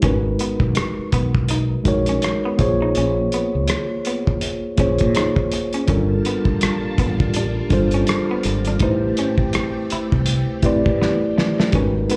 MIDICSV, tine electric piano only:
0, 0, Header, 1, 2, 480
1, 0, Start_track
1, 0, Tempo, 731707
1, 19, Time_signature, 4, 2, 24, 8
1, 7980, End_track
2, 0, Start_track
2, 0, Title_t, "Tine electric piano"
2, 0, Program_c, 0, 4
2, 0, Control_c, 0, 64, 127
2, 10, Note_on_c, 0, 56, 80
2, 16, Note_on_c, 0, 63, 71
2, 22, Note_on_c, 0, 66, 69
2, 27, Control_c, 0, 64, 0
2, 27, Note_on_c, 0, 70, 66
2, 36, Note_on_c, 0, 71, 81
2, 125, Control_c, 0, 64, 127
2, 928, Note_off_c, 0, 56, 0
2, 931, Note_off_c, 0, 63, 0
2, 934, Note_off_c, 0, 66, 0
2, 937, Note_off_c, 0, 70, 0
2, 941, Note_off_c, 0, 71, 0
2, 1207, Note_on_c, 0, 56, 84
2, 1213, Note_on_c, 0, 63, 79
2, 1221, Note_on_c, 0, 66, 75
2, 1226, Note_on_c, 0, 70, 75
2, 1233, Note_on_c, 0, 73, 95
2, 1690, Note_on_c, 0, 58, 92
2, 1693, Note_off_c, 0, 56, 0
2, 1696, Note_off_c, 0, 63, 0
2, 1696, Note_on_c, 0, 65, 86
2, 1700, Note_off_c, 0, 66, 0
2, 1703, Note_off_c, 0, 70, 0
2, 1703, Note_on_c, 0, 68, 76
2, 1705, Note_off_c, 0, 73, 0
2, 1707, Control_c, 0, 64, 0
2, 1707, Note_on_c, 0, 72, 82
2, 1713, Note_on_c, 0, 73, 101
2, 1813, Control_c, 0, 64, 127
2, 2608, Note_off_c, 0, 58, 0
2, 2611, Note_off_c, 0, 65, 0
2, 2615, Note_off_c, 0, 68, 0
2, 2617, Note_off_c, 0, 72, 0
2, 2620, Note_off_c, 0, 73, 0
2, 3128, Note_on_c, 0, 58, 76
2, 3135, Note_on_c, 0, 65, 77
2, 3140, Note_on_c, 0, 68, 72
2, 3146, Note_on_c, 0, 72, 75
2, 3153, Note_on_c, 0, 73, 97
2, 3819, Note_off_c, 0, 58, 0
2, 3822, Note_off_c, 0, 65, 0
2, 3825, Note_off_c, 0, 68, 0
2, 3828, Note_off_c, 0, 72, 0
2, 3831, Note_off_c, 0, 73, 0
2, 3851, Note_on_c, 0, 55, 81
2, 3857, Note_on_c, 0, 62, 76
2, 3864, Note_on_c, 0, 65, 71
2, 3867, Control_c, 0, 64, 0
2, 3869, Note_on_c, 0, 69, 75
2, 3876, Note_on_c, 0, 70, 82
2, 3965, Control_c, 0, 64, 127
2, 4769, Note_off_c, 0, 55, 0
2, 4772, Note_off_c, 0, 62, 0
2, 4775, Note_off_c, 0, 65, 0
2, 4778, Note_off_c, 0, 69, 0
2, 4781, Note_off_c, 0, 70, 0
2, 5047, Note_on_c, 0, 55, 83
2, 5053, Note_on_c, 0, 62, 76
2, 5061, Note_on_c, 0, 65, 74
2, 5064, Note_on_c, 0, 69, 76
2, 5072, Note_on_c, 0, 72, 91
2, 5738, Note_off_c, 0, 55, 0
2, 5741, Note_off_c, 0, 62, 0
2, 5745, Note_off_c, 0, 65, 0
2, 5747, Note_off_c, 0, 69, 0
2, 5751, Note_off_c, 0, 72, 0
2, 5768, Note_on_c, 0, 57, 83
2, 5775, Note_on_c, 0, 64, 73
2, 5780, Note_on_c, 0, 67, 67
2, 5787, Control_c, 0, 64, 0
2, 5787, Note_on_c, 0, 71, 71
2, 5793, Note_on_c, 0, 72, 94
2, 5898, Control_c, 0, 64, 127
2, 6687, Note_off_c, 0, 57, 0
2, 6691, Note_off_c, 0, 64, 0
2, 6693, Note_off_c, 0, 67, 0
2, 6697, Note_off_c, 0, 71, 0
2, 6700, Note_off_c, 0, 72, 0
2, 6967, Note_on_c, 0, 57, 79
2, 6974, Note_on_c, 0, 64, 79
2, 6980, Note_on_c, 0, 67, 84
2, 6985, Note_on_c, 0, 71, 82
2, 6991, Note_on_c, 0, 74, 95
2, 7658, Note_off_c, 0, 57, 0
2, 7662, Note_off_c, 0, 64, 0
2, 7665, Note_off_c, 0, 67, 0
2, 7667, Note_off_c, 0, 71, 0
2, 7670, Note_off_c, 0, 74, 0
2, 7683, Note_on_c, 0, 56, 81
2, 7691, Note_on_c, 0, 63, 73
2, 7697, Note_on_c, 0, 66, 69
2, 7704, Note_on_c, 0, 70, 68
2, 7707, Control_c, 0, 64, 0
2, 7709, Note_on_c, 0, 71, 76
2, 7830, Control_c, 0, 64, 127
2, 7918, Note_off_c, 0, 56, 0
2, 7922, Note_off_c, 0, 63, 0
2, 7926, Note_off_c, 0, 66, 0
2, 7926, Note_on_c, 0, 56, 80
2, 7930, Note_off_c, 0, 70, 0
2, 7930, Note_on_c, 0, 63, 70
2, 7933, Note_off_c, 0, 71, 0
2, 7935, Note_on_c, 0, 66, 62
2, 7942, Note_on_c, 0, 70, 67
2, 7948, Note_on_c, 0, 71, 81
2, 7980, Note_off_c, 0, 56, 0
2, 7980, Note_off_c, 0, 63, 0
2, 7980, Note_off_c, 0, 66, 0
2, 7980, Note_off_c, 0, 70, 0
2, 7980, Note_off_c, 0, 71, 0
2, 7980, End_track
0, 0, End_of_file